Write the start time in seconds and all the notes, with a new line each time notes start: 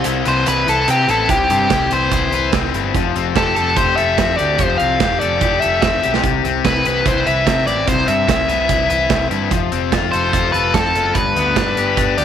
Already playing: C3 C4
0.04 C2 E4, closed hi-hat
0.25 C2 B4 C5, closed hi-hat
0.46 C2 E4 B4, closed hi-hat
0.67 C2 A4 B4, closed hi-hat
0.88 C3 C4 G4, closed hi-hat
1.08 A1 E4 A4, closed hi-hat
1.29 C2 C3 G4, kick, closed hi-hat
1.50 G2 C4 G4, closed hi-hat
1.70 C2 E4, kick, snare, closed hi-hat
1.91 C2 B4 C5, closed hi-hat
2.12 C2 E4, kick, closed hi-hat
2.32 C2 B4, closed hi-hat
2.53 C2 C4, kick, snare, closed hi-hat
2.74 G1 E4, closed hi-hat
2.94 F1 F3, kick, closed hi-hat
3.15 F1 C4, closed hi-hat
3.36 F1 G4 A4, kick, snare, closed hi-hat
3.56 F1 A4, closed hi-hat
3.76 F1 G4 C5, kick, closed hi-hat
3.96 F1 A4 E5, closed hi-hat
4.18 F2 C4, kick, snare, closed hi-hat
4.37 D2 G4 D5, closed hi-hat
4.56 F1 F3 C5, kick, closed hi-hat
4.78 C2 C4 F5, closed hi-hat
5.00 F1 G4, kick, snare, closed hi-hat
5.20 F1 A4 D5, closed hi-hat
5.41 F1 G4, kick, closed hi-hat
5.61 F1 A4 E5, closed hi-hat
5.82 F1 C4 E5, kick, snare, closed hi-hat
6.02 B1 G4, closed hi-hat
6.14 snare
6.24 C2 C3, kick, closed hi-hat
6.44 C2 C4, closed hi-hat
6.64 C2 E4 B4, kick, snare, closed hi-hat
6.85 C2 B4, closed hi-hat
7.06 C2 E4 C5, kick, closed hi-hat
7.26 C2 B4 E5, closed hi-hat
7.45 C3 C4, kick, snare, closed hi-hat
7.66 A1 E4 D5, closed hi-hat
7.86 C2 C3 C5, kick, closed hi-hat
8.06 G2 C4 E5, closed hi-hat
8.27 C2 E4, kick, snare, closed hi-hat
8.48 C2 B4, closed hi-hat
8.68 C2 E4, kick, closed hi-hat
8.89 C2 B4, closed hi-hat
9.09 C2 C4, kick, snare, closed hi-hat
9.31 G2 E4, closed hi-hat
9.51 F1 F3, kick, closed hi-hat
9.72 F1 C4, closed hi-hat
9.92 F1 F4, kick, snare, closed hi-hat
10.12 F1 A4 C5, closed hi-hat
10.32 F1 F4, kick, closed hi-hat
10.52 F1 A4 B4, closed hi-hat
10.74 F2 C4 A4, kick, snare, closed hi-hat
10.95 F#1 F4, closed hi-hat
11.14 G1 G2 B4, kick, closed hi-hat
11.36 D2 B3, closed hi-hat
11.56 G1 D4, kick, snare, closed hi-hat
11.77 G1 G4, closed hi-hat
11.97 G1 D4, kick, closed hi-hat
12.17 D2 G4 D5, closed hi-hat